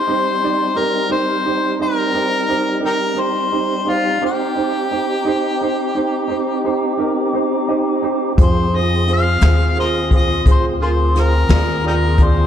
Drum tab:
HH |------------|------------|x-xx-xx-xx-x|
SD |------------|------------|---o----oo--|
BD |------------|------------|o----oo----o|